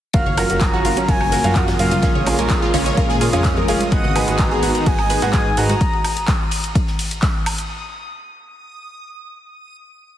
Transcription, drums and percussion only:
0.13 kick, closed hi-hat, ride, shaker
0.26 ride, low conga
0.37 snare, open hi-hat, ride, high bongo, high woodblock, shaker
0.50 closed hi-hat, shaker
0.61 kick, snare, clap, closed hi-hat, ride, shaker
0.85 open hi-hat, ride, shaker
0.96 closed hi-hat, ride, high bongo, shaker
1.08 kick, closed hi-hat, open hi-hat, ride, high conga, shaker
1.21 high woodblock
1.32 snare, open hi-hat, ride, shaker
1.44 closed hi-hat, high conga, shaker
1.55 kick, clap, closed hi-hat, ride, shaker
1.68 snare, ride, high bongo
1.79 open hi-hat, ride, shaker
1.91 closed hi-hat, ride, high conga, shaker
2.02 kick, snare, closed hi-hat, ride, shaker
2.15 low conga
2.27 open hi-hat, ride, high bongo, high woodblock, shaker
2.39 closed hi-hat, ride, high conga, shaker
2.49 kick, snare, clap, closed hi-hat, ride, shaker
2.74 open hi-hat, ride, low conga, shaker
2.86 closed hi-hat, shaker
2.97 kick, closed hi-hat, ride, high bongo, shaker
3.09 snare
3.21 open hi-hat, ride, shaker
3.33 closed hi-hat, shaker
3.44 kick, snare, clap, closed hi-hat, ride, shaker
3.58 high bongo
3.68 snare, open hi-hat, ride, shaker
3.80 closed hi-hat, high conga, shaker
3.92 kick, closed hi-hat, ride, shaker
4.04 ride, low conga
4.15 snare, open hi-hat, ride, high woodblock, shaker
4.28 closed hi-hat, high bongo, shaker
4.38 kick, snare, clap, closed hi-hat, ride, shaker
4.62 open hi-hat, ride, shaker
4.75 closed hi-hat, ride, shaker
4.86 kick, closed hi-hat, open hi-hat, ride, high bongo, high conga, shaker
4.99 high woodblock
5.09 open hi-hat, ride, shaker
5.22 snare, closed hi-hat, high conga, shaker
5.33 kick, snare, clap, closed hi-hat, ride, shaker
5.57 open hi-hat, ride, high bongo, shaker
5.69 snare, closed hi-hat, high conga, shaker
5.81 kick, closed hi-hat, ride, shaker
5.93 ride
6.04 snare, open hi-hat, ride, high woodblock, shaker
6.17 closed hi-hat, ride, shaker
6.28 kick, snare, clap, closed hi-hat, ride, shaker
6.51 open hi-hat, ride, shaker
6.64 closed hi-hat, shaker
6.75 kick, closed hi-hat, ride, shaker
6.87 snare
6.99 open hi-hat, ride, shaker
7.11 closed hi-hat, shaker
7.22 kick, snare, clap, closed hi-hat, ride, shaker
7.46 snare, open hi-hat, ride, high woodblock, shaker
7.58 closed hi-hat, shaker

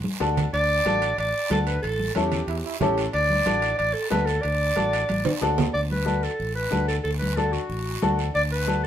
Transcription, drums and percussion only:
0.04 high conga
0.21 high timbale, short guiro
0.37 low conga, high timbale, short guiro
0.54 high timbale, long guiro
0.86 high conga, high timbale, short guiro
1.02 high timbale, short guiro
1.18 high timbale, long guiro
1.51 high conga, high timbale, short guiro
1.67 high timbale, short guiro
1.83 high timbale, long guiro
1.99 high conga
2.15 high conga, high timbale, short guiro
2.32 low conga, high timbale, short guiro
2.48 high timbale, long guiro
2.81 high conga, low conga, high timbale, short guiro
2.98 high timbale, short guiro
3.13 high timbale, long guiro
3.31 high conga
3.46 high conga, high timbale, short guiro
3.62 high timbale, short guiro
3.79 high timbale, long guiro
4.12 high conga, high timbale, low timbale, short guiro
4.27 high timbale, short guiro
4.43 high timbale, long guiro
4.76 high conga, high timbale, short guiro
4.93 high timbale, short guiro
5.09 high conga, high timbale, long guiro
5.25 low conga, high timbale
5.41 low timbale, short guiro
5.58 low conga, low timbale, short guiro
5.75 long guiro
5.91 high conga
6.08 high conga, short guiro
6.23 short guiro
6.40 long guiro
6.72 high conga, short guiro
6.89 short guiro
7.05 long guiro
7.22 high conga
7.37 high conga, short guiro
7.53 short guiro
7.70 long guiro
8.02 high conga, short guiro
8.19 short guiro
8.35 long guiro
8.68 high conga, short guiro

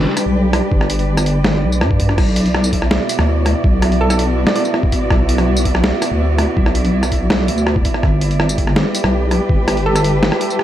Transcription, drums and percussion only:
0.17 cross-stick, closed hi-hat, tambourine
0.53 cross-stick, closed hi-hat
0.72 kick
0.81 cross-stick
0.90 closed hi-hat
0.99 closed hi-hat
1.17 cross-stick, tambourine
1.26 closed hi-hat
1.44 cross-stick, snare
1.72 tambourine
1.81 cross-stick
1.91 kick
2.00 kick, closed hi-hat
2.09 cross-stick
2.18 kick, cross-stick, crash
2.36 closed hi-hat
2.46 closed hi-hat
2.55 cross-stick
2.64 tambourine
2.73 kick, closed hi-hat
2.82 cross-stick
2.91 snare
3.09 closed hi-hat, tambourine
3.19 cross-stick
3.46 cross-stick, closed hi-hat
3.64 kick
3.82 cross-stick, closed hi-hat
3.92 closed hi-hat
4.10 cross-stick, tambourine
4.19 closed hi-hat
4.47 cross-stick, snare
4.56 closed hi-hat
4.65 tambourine
4.74 cross-stick
4.83 kick
4.92 kick, closed hi-hat
5.10 kick, cross-stick
5.29 closed hi-hat
5.38 cross-stick, closed hi-hat
5.57 tambourine
5.65 kick, closed hi-hat
5.75 cross-stick
5.84 snare
6.02 cross-stick, closed hi-hat, tambourine
6.38 cross-stick, closed hi-hat
6.57 kick
6.66 cross-stick
6.75 closed hi-hat
6.85 closed hi-hat
7.03 cross-stick, tambourine
7.12 kick, closed hi-hat
7.30 cross-stick, snare
7.48 closed hi-hat
7.58 tambourine
7.67 cross-stick
7.76 kick
7.85 kick, closed hi-hat
7.94 cross-stick
8.03 kick, cross-stick
8.21 closed hi-hat
8.31 closed hi-hat
8.40 cross-stick
8.49 tambourine
8.58 kick, closed hi-hat
8.67 cross-stick
8.76 snare
8.95 closed hi-hat, tambourine
9.04 cross-stick
9.31 cross-stick, closed hi-hat
9.49 kick
9.68 cross-stick, closed hi-hat
9.77 closed hi-hat
9.96 cross-stick, tambourine
10.04 closed hi-hat
10.23 snare
10.32 cross-stick
10.41 closed hi-hat
10.50 tambourine
10.59 cross-stick

